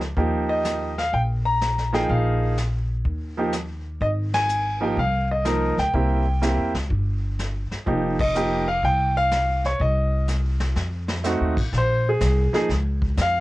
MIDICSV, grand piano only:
0, 0, Header, 1, 2, 480
1, 0, Start_track
1, 0, Key_signature, -4, "minor"
1, 0, Tempo, 481928
1, 163, Time_signature, 4, 2, 24, 8
1, 13349, End_track
2, 0, Start_track
2, 0, Title_t, "Grand piano"
2, 0, Program_c, 0, 0
2, 165, Note_on_c, 0, 53, 60
2, 170, Note_on_c, 0, 58, 62
2, 178, Note_on_c, 0, 63, 53
2, 180, Note_on_c, 0, 67, 65
2, 492, Note_on_c, 0, 75, 85
2, 902, Note_off_c, 0, 53, 0
2, 905, Note_off_c, 0, 58, 0
2, 909, Note_off_c, 0, 63, 0
2, 910, Note_off_c, 0, 67, 0
2, 979, Note_on_c, 0, 77, 80
2, 983, Note_off_c, 0, 75, 0
2, 1132, Note_off_c, 0, 77, 0
2, 1132, Note_on_c, 0, 79, 89
2, 1204, Note_off_c, 0, 79, 0
2, 1448, Note_on_c, 0, 82, 92
2, 1918, Note_on_c, 0, 53, 68
2, 1925, Note_on_c, 0, 58, 62
2, 1930, Note_on_c, 0, 63, 72
2, 1935, Note_on_c, 0, 68, 78
2, 1937, Note_on_c, 0, 79, 81
2, 1941, Note_off_c, 0, 82, 0
2, 2091, Note_off_c, 0, 79, 0
2, 2091, Note_on_c, 0, 77, 74
2, 2526, Note_off_c, 0, 53, 0
2, 2529, Note_off_c, 0, 58, 0
2, 2532, Note_off_c, 0, 63, 0
2, 2532, Note_off_c, 0, 77, 0
2, 2534, Note_off_c, 0, 68, 0
2, 3360, Note_on_c, 0, 53, 64
2, 3367, Note_on_c, 0, 58, 58
2, 3370, Note_on_c, 0, 63, 59
2, 3379, Note_on_c, 0, 67, 66
2, 3502, Note_off_c, 0, 53, 0
2, 3505, Note_off_c, 0, 58, 0
2, 3507, Note_off_c, 0, 63, 0
2, 3511, Note_off_c, 0, 67, 0
2, 4002, Note_on_c, 0, 75, 89
2, 4075, Note_off_c, 0, 75, 0
2, 4325, Note_on_c, 0, 80, 118
2, 4787, Note_on_c, 0, 53, 63
2, 4790, Note_on_c, 0, 58, 61
2, 4794, Note_on_c, 0, 63, 58
2, 4805, Note_on_c, 0, 67, 69
2, 4815, Note_on_c, 0, 79, 74
2, 4818, Note_off_c, 0, 80, 0
2, 4935, Note_off_c, 0, 53, 0
2, 4937, Note_off_c, 0, 58, 0
2, 4939, Note_off_c, 0, 63, 0
2, 4944, Note_off_c, 0, 67, 0
2, 4969, Note_off_c, 0, 79, 0
2, 4971, Note_on_c, 0, 77, 87
2, 5267, Note_off_c, 0, 77, 0
2, 5293, Note_on_c, 0, 75, 87
2, 5426, Note_on_c, 0, 53, 64
2, 5429, Note_on_c, 0, 58, 54
2, 5436, Note_on_c, 0, 63, 62
2, 5443, Note_on_c, 0, 70, 75
2, 5724, Note_off_c, 0, 53, 0
2, 5726, Note_off_c, 0, 58, 0
2, 5729, Note_off_c, 0, 63, 0
2, 5733, Note_off_c, 0, 70, 0
2, 5735, Note_off_c, 0, 75, 0
2, 5768, Note_on_c, 0, 79, 84
2, 5911, Note_on_c, 0, 58, 59
2, 5916, Note_on_c, 0, 60, 50
2, 5925, Note_on_c, 0, 64, 51
2, 5926, Note_on_c, 0, 67, 65
2, 6207, Note_off_c, 0, 58, 0
2, 6209, Note_off_c, 0, 60, 0
2, 6214, Note_off_c, 0, 64, 0
2, 6214, Note_off_c, 0, 67, 0
2, 6390, Note_on_c, 0, 58, 63
2, 6394, Note_on_c, 0, 60, 55
2, 6398, Note_on_c, 0, 64, 55
2, 6404, Note_on_c, 0, 67, 72
2, 6685, Note_off_c, 0, 79, 0
2, 6686, Note_off_c, 0, 58, 0
2, 6688, Note_off_c, 0, 60, 0
2, 6690, Note_off_c, 0, 64, 0
2, 6693, Note_off_c, 0, 67, 0
2, 7829, Note_on_c, 0, 53, 60
2, 7838, Note_on_c, 0, 58, 52
2, 7842, Note_on_c, 0, 63, 58
2, 7846, Note_on_c, 0, 67, 61
2, 8126, Note_off_c, 0, 53, 0
2, 8131, Note_off_c, 0, 58, 0
2, 8132, Note_off_c, 0, 63, 0
2, 8134, Note_off_c, 0, 67, 0
2, 8172, Note_on_c, 0, 75, 95
2, 8315, Note_on_c, 0, 53, 58
2, 8322, Note_on_c, 0, 58, 55
2, 8326, Note_on_c, 0, 63, 53
2, 8333, Note_on_c, 0, 67, 75
2, 8609, Note_off_c, 0, 53, 0
2, 8613, Note_off_c, 0, 58, 0
2, 8614, Note_off_c, 0, 63, 0
2, 8614, Note_off_c, 0, 75, 0
2, 8618, Note_off_c, 0, 67, 0
2, 8645, Note_on_c, 0, 77, 90
2, 8804, Note_off_c, 0, 77, 0
2, 8813, Note_on_c, 0, 79, 101
2, 9108, Note_off_c, 0, 79, 0
2, 9135, Note_on_c, 0, 77, 108
2, 9576, Note_off_c, 0, 77, 0
2, 9618, Note_on_c, 0, 73, 70
2, 9756, Note_off_c, 0, 73, 0
2, 9771, Note_on_c, 0, 75, 79
2, 10212, Note_off_c, 0, 75, 0
2, 11195, Note_on_c, 0, 57, 63
2, 11199, Note_on_c, 0, 60, 58
2, 11208, Note_on_c, 0, 63, 63
2, 11217, Note_on_c, 0, 66, 68
2, 11490, Note_off_c, 0, 57, 0
2, 11492, Note_off_c, 0, 60, 0
2, 11496, Note_off_c, 0, 63, 0
2, 11501, Note_off_c, 0, 66, 0
2, 11730, Note_on_c, 0, 72, 82
2, 12021, Note_off_c, 0, 72, 0
2, 12041, Note_on_c, 0, 68, 68
2, 12478, Note_on_c, 0, 53, 65
2, 12483, Note_off_c, 0, 68, 0
2, 12484, Note_on_c, 0, 58, 55
2, 12492, Note_on_c, 0, 63, 61
2, 12498, Note_on_c, 0, 68, 75
2, 12622, Note_off_c, 0, 53, 0
2, 12625, Note_off_c, 0, 58, 0
2, 12629, Note_off_c, 0, 63, 0
2, 12632, Note_off_c, 0, 68, 0
2, 13160, Note_on_c, 0, 77, 97
2, 13349, Note_off_c, 0, 77, 0
2, 13349, End_track
0, 0, End_of_file